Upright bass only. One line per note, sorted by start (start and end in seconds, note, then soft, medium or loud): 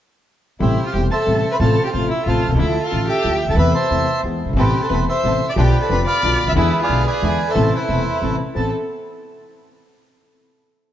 0.60 0.74 A1 medium
0.94 1.07 E1 medium
1.27 1.41 A1 soft
1.60 1.74 A1 medium
1.94 2.07 A1 soft
2.26 2.40 A1 medium
2.48 2.50 B1 soft
2.48 2.54 C2 medium
2.54 2.59 C#2 medium
2.59 2.73 D2 medium
2.92 3.06 A1 soft
3.24 3.39 D2 medium
3.45 3.48 C#2 soft
3.45 3.53 D2 medium
3.54 3.56 D#2 medium
3.54 3.71 E2 medium
3.91 4.05 E2 soft
4.23 4.38 E2 soft
4.45 4.48 F#1 soft
4.49 4.52 G1 medium
4.49 4.56 G#1 medium
4.56 4.71 A1 medium
4.90 5.04 E1 soft
5.24 5.38 A1 soft
5.56 5.70 B1 medium
5.90 6.04 F1 soft
6.23 6.37 B1 soft
6.44 6.47 C#2 soft
6.44 6.52 D2 medium
6.52 6.56 D#2 medium
6.52 6.70 E2 medium
6.89 7.03 B1 medium
7.22 7.36 E2 medium
7.56 7.69 A1 medium
7.89 8.02 E1 soft
8.22 8.35 A1 soft
8.55 8.69 A1 soft